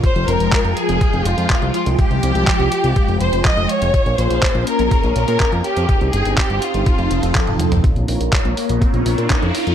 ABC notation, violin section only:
X:1
M:4/4
L:1/8
Q:1/4=123
K:Fm
V:1 name="Violin section"
c B2 A2 F2 F | G4- G c e d- | d c2 B2 B2 G- | G A G F4 z |
[K:Bbdor] z8 |]